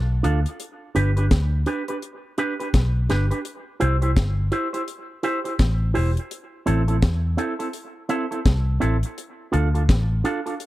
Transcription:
0.00 0.21 B1 medium
0.23 0.44 D2 medium
0.23 0.39 D4 medium
0.23 0.39 F4 loud
0.23 0.39 A4 medium
0.23 closed hi-hat medium
0.46 closed hi-hat medium
0.60 closed hi-hat medium
0.95 1.28 G1 loud
0.95 1.10 D4 medium
0.95 1.11 G4 loud
0.95 1.11 B4 loud
0.95 closed hi-hat medium
1.17 1.25 D4 medium
1.17 1.25 G4 medium
1.17 1.25 B4 medium
1.17 closed hi-hat medium
1.31 1.64 D2 medium
1.31 kick loud
1.31 snare loud
1.31 closed hi-hat medium
1.66 1.82 D4 medium
1.66 1.82 G4 medium
1.66 1.82 B4 medium
1.66 closed hi-hat medium
1.88 1.97 D4 medium
1.88 1.97 G4 medium
1.88 1.96 B4 medium
1.88 closed hi-hat medium
2.02 closed hi-hat medium
2.38 2.53 D4 medium
2.38 2.53 G4 loud
2.38 2.54 B4 loud
2.38 closed hi-hat medium
2.60 2.68 D4 medium
2.60 2.68 G4 medium
2.60 2.67 B4 medium
2.60 closed hi-hat medium
2.74 3.07 B1 loud
2.74 kick loud
2.74 snare loud
2.74 closed hi-hat medium
3.09 3.30 G1 medium
3.09 3.25 D4 medium
3.09 3.25 G4 medium
3.09 3.25 B4 medium
3.09 snare medium
3.09 closed hi-hat medium
3.31 3.39 D4 medium
3.31 3.39 G4 medium
3.31 3.39 B4 medium
3.31 closed hi-hat medium
3.45 closed hi-hat medium
3.80 4.14 C2 loud
3.80 3.96 E4 medium
3.80 3.96 G4 medium
3.80 3.96 C5 loud
3.80 closed hi-hat medium
4.02 4.11 E4 medium
4.02 4.10 G4 medium
4.02 4.10 C5 medium
4.02 closed hi-hat medium
4.16 4.50 G1 medium
4.16 kick loud
4.16 snare loud
4.16 closed hi-hat medium
4.52 4.67 E4 medium
4.52 4.68 G4 medium
4.52 4.68 C5 medium
4.52 closed hi-hat medium
4.73 4.82 E4 medium
4.73 4.82 G4 medium
4.73 4.81 C5 medium
4.73 closed hi-hat medium
4.88 closed hi-hat medium
5.23 5.39 E4 medium
5.23 5.39 G4 medium
5.23 5.39 C5 loud
5.23 closed hi-hat medium
5.44 5.53 E4 medium
5.44 5.53 G4 medium
5.44 5.53 C5 medium
5.44 closed hi-hat medium
5.59 5.93 A1 loud
5.59 kick loud
5.59 snare loud
5.59 closed hi-hat medium
5.94 6.16 E1 medium
5.94 6.10 E4 medium
5.94 6.10 G4 medium
5.94 6.10 C5 medium
5.94 open hi-hat medium
6.17 closed hi-hat medium
6.31 closed hi-hat medium
6.66 7.00 A1 loud
6.66 6.82 C4 medium
6.66 6.82 E4 loud
6.66 6.82 A4 loud
6.66 closed hi-hat medium
6.88 6.97 C4 medium
6.88 6.96 E4 medium
6.88 6.96 A4 medium
6.88 closed hi-hat medium
7.02 7.35 E2 medium
7.02 kick loud
7.02 snare loud
7.02 closed hi-hat medium
7.37 7.53 C4 medium
7.37 7.53 E4 medium
7.37 7.54 A4 medium
7.37 closed hi-hat medium
7.59 7.68 C4 medium
7.59 7.68 E4 medium
7.59 7.67 A4 medium
7.59 closed hi-hat medium
7.73 closed hi-hat medium
8.09 8.25 C4 loud
8.09 8.25 E4 loud
8.09 8.25 A4 loud
8.09 closed hi-hat medium
8.31 8.39 C4 medium
8.31 8.39 E4 medium
8.31 8.39 A4 medium
8.31 closed hi-hat soft
8.46 8.79 C2 loud
8.46 kick loud
8.46 snare loud
8.46 closed hi-hat medium
8.80 9.02 A1 medium
8.80 8.96 C4 loud
8.80 8.96 E4 medium
8.80 8.97 A4 loud
8.80 closed hi-hat medium
9.03 closed hi-hat medium
9.18 closed hi-hat medium
9.52 9.86 D2 loud
9.52 9.67 D4 medium
9.52 9.68 F4 loud
9.52 9.68 A4 loud
9.52 closed hi-hat medium
9.74 9.83 D4 soft
9.74 9.82 F4 medium
9.74 9.82 A4 medium
9.74 closed hi-hat medium
9.89 10.22 A1 loud
9.89 kick loud
9.89 snare loud
9.89 closed hi-hat medium
10.24 10.39 D4 medium
10.24 10.40 F4 medium
10.24 10.40 A4 loud
10.24 closed hi-hat medium
10.46 10.54 D4 medium
10.46 10.54 F4 medium
10.46 10.54 A4 medium
10.46 closed hi-hat medium
10.60 closed hi-hat medium

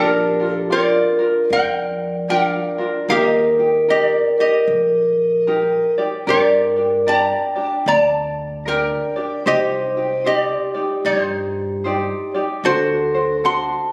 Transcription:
0.00 0.94 A#1 medium
0.00 0.40 D4 medium
0.00 0.67 D4 medium
0.00 0.40 F4 medium
0.00 0.39 G4 medium
0.00 0.66 G4 medium
0.00 0.38 A#4 medium
0.00 0.49 A#4 medium
0.40 0.69 D4 soft
0.40 0.70 F4 soft
0.40 0.70 A#4 soft
0.49 0.74 A4 medium
0.70 1.20 D4 soft
0.70 1.19 F4 medium
0.70 1.47 F4 medium
0.70 1.19 G4 medium
0.70 1.46 A#4 medium
0.70 1.18 A#4 medium
0.70 1.52 D5 medium
1.19 2.29 D4 soft
1.19 2.29 F4 soft
1.19 2.30 A#4 medium
1.50 2.53 F2 medium
1.50 2.27 A#4 medium
1.50 2.25 D5 medium
1.50 2.30 G5 loud
2.29 2.79 D4 medium
2.29 2.78 F4 medium
2.29 2.79 G4 medium
2.29 3.05 A#4 medium
2.29 2.77 A#4 medium
2.29 3.05 D5 medium
2.29 3.12 F5 medium
2.78 3.09 D4 soft
2.78 3.09 F4 soft
2.78 3.08 A#4 medium
3.08 4.12 D#2 medium
3.08 3.59 D#4 medium
3.08 3.58 G4 medium
3.08 3.86 G4 medium
3.08 3.84 A#4 medium
3.08 3.58 A#4 medium
3.08 3.90 D#5 medium
3.59 3.88 D#4 soft
3.59 3.88 G4 soft
3.88 4.38 D#4 medium
3.88 4.38 G4 medium
3.88 4.35 G4 medium
3.88 4.38 A#4 medium
3.88 4.35 A#4 medium
3.88 4.39 D5 medium
3.88 4.03 D#5 medium
4.03 4.40 D5 medium
4.38 5.47 D#4 soft
4.38 5.48 G4 soft
4.38 5.94 G4 medium
4.38 5.93 A#4 medium
4.38 5.94 D#5 medium
4.67 5.71 A#1 medium
5.47 5.97 D#4 medium
5.47 5.97 G4 medium
5.47 5.97 A#4 medium
5.98 6.27 D#4 soft
5.98 6.27 G4 soft
5.98 6.27 D5 medium
6.27 7.31 G2 medium
6.27 6.77 D4 medium
6.27 6.77 G4 medium
6.27 7.04 G4 medium
6.27 6.76 A#4 medium
6.27 7.03 A#4 medium
6.27 6.75 D5 medium
6.27 7.07 D5 loud
6.76 7.05 D4 soft
6.76 7.07 G4 soft
6.76 7.07 D5 soft
7.06 7.56 D4 medium
7.06 7.55 G4 medium
7.06 7.56 A#4 medium
7.06 7.83 D5 medium
7.06 7.54 D5 medium
7.06 7.83 G5 medium
7.06 7.65 A#5 loud
7.55 8.66 D4 soft
7.55 8.67 G4 soft
7.55 8.67 D5 soft
7.65 7.88 A5 loud
7.86 8.90 D2 loud
7.86 8.62 D5 medium
7.86 8.63 D5 medium
7.86 8.63 A5 medium
8.66 9.16 D4 medium
8.66 9.16 G4 medium
8.66 9.15 A#4 medium
8.66 9.42 A#4 medium
8.66 9.42 D5 medium
8.66 9.15 D5 medium
8.66 9.49 G5 medium
9.16 9.46 D4 soft
9.16 9.46 G4 soft
9.16 9.45 D5 medium
9.46 10.49 C2 medium
9.46 9.95 D#4 medium
9.46 10.22 G4 medium
9.46 9.96 G4 medium
9.46 9.95 C5 medium
9.46 10.22 C5 medium
9.46 10.27 D#5 medium
9.97 10.24 D#4 soft
9.97 10.24 G4 soft
10.25 10.75 D#4 medium
10.25 10.74 G4 medium
10.25 11.01 G4 medium
10.25 11.02 G4 medium
10.25 10.74 C5 medium
10.25 10.73 D5 medium
10.25 11.02 D5 medium
10.75 11.84 D#4 soft
10.75 11.85 G4 medium
10.75 11.86 D5 soft
11.05 12.08 G2 medium
11.05 12.31 D#4 medium
11.05 12.30 G4 medium
11.05 12.30 C5 medium
11.84 12.34 D#4 medium
11.84 12.34 G4 medium
11.84 12.34 C5 medium
11.84 12.33 D5 medium
12.35 12.65 D#4 soft
12.35 12.65 G4 medium
12.35 12.65 D5 soft
12.64 13.68 D2 medium
12.64 13.14 D4 medium
12.64 13.41 F#4 medium
12.64 13.14 F#4 medium
12.64 13.14 A4 medium
12.64 13.41 A4 medium
12.64 13.41 C5 medium
12.64 13.13 C5 medium
13.14 13.43 D4 soft
13.14 13.44 F#4 soft
13.14 13.44 C5 medium
13.44 13.92 D4 medium
13.44 13.92 F#4 soft
13.44 13.92 A4 medium
13.44 13.92 C5 medium
13.44 13.92 F#5 medium
13.44 13.92 A5 medium
13.44 13.92 C6 loud

